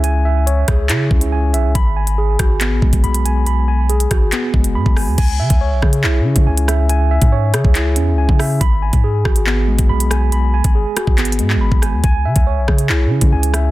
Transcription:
Already playing: 808-style bass C#2, tine electric piano C#4 E4 G#4 E5
0.04 tine electric piano G#5, closed hi-hat
0.25 tine electric piano E5
0.47 tine electric piano C#5, closed hi-hat
0.68 808-style bass C#2, tine electric piano G#4, kick, cross-stick, closed hi-hat
0.89 808-style bass C#3, tine electric piano E4, clap, closed hi-hat
1.11 808-style bass C#2, tine electric piano C#4, kick
1.21 closed hi-hat
1.32 tine electric piano G#5
1.54 808-style bass B1, tine electric piano E5, closed hi-hat
1.64 808-style bass C#2
1.75 808-style bass G#1, tine electric piano B5, kick, closed hi-hat
1.96 tine electric piano G#5
2.07 closed hi-hat
2.18 tine electric piano G#4
2.39 808-style bass G#1, tine electric piano F#4, kick, cross-stick, closed hi-hat
2.61 tine electric piano B3, clap, closed hi-hat
2.72 808-style bass A1
2.82 808-style bass G#1, tine electric piano G#3, kick
2.93 808-style bass G#1, kick, closed hi-hat
3.04 808-style bass B1, tine electric piano B5, closed hi-hat
3.14 closed hi-hat
3.25 tine electric piano G#5, closed hi-hat
3.47 tine electric piano B5, closed hi-hat
3.68 tine electric piano G#5
3.89 tine electric piano G#4, closed hi-hat
4.00 closed hi-hat
4.11 808-style bass G#1, tine electric piano F#4, kick, cross-stick, closed hi-hat
4.32 tine electric piano B3, clap, closed hi-hat
4.54 808-style bass F#1, tine electric piano G#3, kick
4.64 closed hi-hat
4.75 808-style bass G#2, tine electric piano B5
4.86 808-style bass G#1, kick
4.96 tine electric piano G#5, cross-stick, open hi-hat
5.07 808-style bass D#2
5.18 808-style bass C#2, tine electric piano G#5, kick, closed hi-hat, crash
5.40 808-style bass C#3, tine electric piano E5
5.50 808-style bass C#2, kick, closed hi-hat
5.61 tine electric piano C#5
5.72 808-style bass B1
5.82 808-style bass C#3, tine electric piano G#4, kick, cross-stick
5.93 closed hi-hat
6.04 808-style bass B1, tine electric piano E4, clap
6.20 808-style bass C#3
6.25 tine electric piano C#4
6.36 808-style bass C#3, kick, closed hi-hat
6.47 808-style bass C#2, tine electric piano G#5
6.58 closed hi-hat
6.68 tine electric piano E5, cross-stick, closed hi-hat
6.89 tine electric piano G#5, closed hi-hat
7.11 tine electric piano E5
7.22 808-style bass G#2, kick, closed hi-hat
7.32 tine electric piano C#5
7.54 808-style bass C#3, tine electric piano G#4, cross-stick, closed hi-hat
7.65 808-style bass C#2, kick
7.75 tine electric piano E4, clap, closed hi-hat
7.96 808-style bass E2, tine electric piano C#4, closed hi-hat
8.13 808-style bass C#2
8.18 tine electric piano G#5
8.29 808-style bass C#3, kick
8.39 tine electric piano E5, cross-stick, open hi-hat
8.61 808-style bass G#1, tine electric piano B5, kick, closed hi-hat
8.82 tine electric piano G#5
8.93 808-style bass G#2, kick, closed hi-hat
9.04 tine electric piano G#4
9.25 808-style bass G#1, tine electric piano F#4, kick, cross-stick
9.36 closed hi-hat
9.47 tine electric piano B3, clap
9.68 808-style bass A1, tine electric piano G#3
9.79 808-style bass G#1, kick, closed hi-hat
9.89 808-style bass B1, tine electric piano B5
10.00 closed hi-hat
10.11 tine electric piano G#5, cross-stick, closed hi-hat
10.32 tine electric piano B5, closed hi-hat
10.54 tine electric piano G#5
10.64 808-style bass G#1, kick, closed hi-hat
10.75 tine electric piano G#4
10.97 tine electric piano F#4, cross-stick, closed hi-hat
11.07 808-style bass G#1, kick
11.18 tine electric piano B3, clap, closed hi-hat
11.25 closed hi-hat
11.32 closed hi-hat
11.39 808-style bass G#2, tine electric piano G#3, closed hi-hat
11.50 clap
11.56 808-style bass G#1
11.61 tine electric piano B5
11.72 808-style bass G#1, kick
11.82 tine electric piano G#5, cross-stick, closed hi-hat
11.93 808-style bass D#2
12.04 808-style bass C#2, tine electric piano G#5, kick, closed hi-hat
12.25 808-style bass C#3, tine electric piano E5
12.36 808-style bass C#2, kick, closed hi-hat
12.47 tine electric piano C#5
12.57 808-style bass B1
12.68 808-style bass C#3, tine electric piano G#4, kick, cross-stick
12.79 closed hi-hat
12.89 808-style bass B1, tine electric piano E4, clap
13.06 808-style bass C#3
13.11 tine electric piano C#4
13.21 808-style bass C#3, kick, closed hi-hat
13.32 808-style bass C#2, tine electric piano G#5
13.43 closed hi-hat
13.54 tine electric piano E5, cross-stick, closed hi-hat

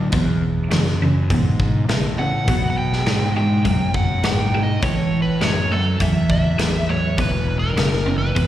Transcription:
Already playing: fingered electric bass D2, overdriven electric guitar A2 F#3
0.12 fingered electric bass E2, overdriven electric guitar E2 B2, kick, open hi-hat
0.71 overdriven electric guitar E2 C#3, fingered electric bass F#2, snare, open hi-hat
0.87 snare
1.02 overdriven electric guitar E2 C#3
1.30 overdriven electric guitar E2 B2, fingered electric bass G#2, kick, open hi-hat
1.60 kick
1.88 overdriven electric guitar E2 C#3, fingered electric bass A2, snare, open hi-hat
2.19 overdriven electric guitar E2 C#3, lead electric guitar F#5
2.48 fingered electric bass B2, overdriven electric guitar B2 F#3, kick, open hi-hat
2.70 lead electric guitar F#5
2.77 lead electric guitar G5
2.93 snare
3.06 fingered electric bass G#2, overdriven electric guitar B2 G#3, snare, open hi-hat
3.37 overdriven electric guitar B2 G#3, lead electric guitar G5
3.65 fingered electric bass F#2, overdriven electric guitar B2 F#3, kick, open hi-hat
3.94 lead electric guitar F#5, kick
4.23 fingered electric bass G#2, overdriven electric guitar B2 G#3, lead electric guitar G5, snare, open hi-hat
4.54 overdriven electric guitar B2 G#3
4.63 lead electric guitar D#5
4.82 fingered electric bass A2, overdriven electric guitar A2 E3, lead electric guitar C#5, kick, open hi-hat
5.22 lead electric guitar B4
5.41 fingered electric bass F#2, overdriven electric guitar A2 F#3, lead electric guitar C#5, snare, open hi-hat
5.72 overdriven electric guitar A2 F#3, lead electric guitar A4
6.00 fingered electric bass E2, overdriven electric guitar A2 E3, lead electric guitar E5, kick, open hi-hat
6.30 lead electric guitar E5, kick
6.59 fingered electric bass E2, overdriven electric guitar A2 F#3, snare, open hi-hat
6.89 overdriven electric guitar A2 F#3, lead electric guitar C#5
7.18 fingered electric bass E1, overdriven electric guitar E2 B2, lead electric guitar B4, kick, open hi-hat
7.59 lead electric guitar A#4
7.76 fingered electric bass F#1, overdriven electric guitar E2 C#3, snare, open hi-hat
7.93 snare
8.06 overdriven electric guitar E2 C#3
8.18 lead electric guitar B4
8.35 fingered electric bass G#1, overdriven electric guitar E2 B2, kick, open hi-hat

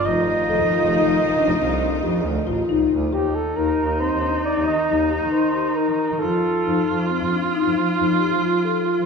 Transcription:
0.05 double bass F1, string section D#3 A3 F4, viola D#4, marimba F4, flugelhorn D#5
0.49 double bass F1, marimba A4
0.61 double bass F2
0.71 marimba F4
0.83 double bass F1
0.94 marimba D#4
1.05 double bass F1
1.27 double bass F1
1.38 double bass F1, marimba D4
1.59 double bass C2, marimba C4
1.81 marimba D4
2.03 double bass F2, marimba G4
2.26 double bass D2
2.47 double bass A1, marimba F4
2.69 double bass C2, marimba D#4
2.92 double bass D2
3.13 double bass D#2, viola D#4, marimba G4, flugelhorn G4
3.35 flugelhorn A4
3.56 double bass D#2, marimba D#4, flugelhorn A#4
3.79 double bass D#2
4.00 marimba C4, flugelhorn C5
4.13 double bass D#2
4.23 marimba D4
4.45 marimba D#4, flugelhorn D5
4.56 double bass D#2
4.67 double bass D#3, flugelhorn D#5
4.89 double bass D#2, marimba D#4
5.10 marimba G4
5.22 double bass D#3
5.33 marimba D#4, flugelhorn C5
5.55 marimba G4
5.76 marimba D#4, flugelhorn A#4
5.88 double bass D#3
6.11 double bass D#3
6.19 double bass F2, viola F4, marimba F4, flugelhorn A4
6.66 double bass F2, marimba D#4
6.89 double bass F2
7.10 marimba C4
7.22 double bass F2
7.31 marimba D4
7.55 marimba D#4
7.65 double bass F2
7.77 double bass F3
7.98 double bass F2, marimba D#4
8.20 marimba G4
8.31 double bass F3
8.42 marimba F4
8.86 marimba F4
8.98 double bass F3

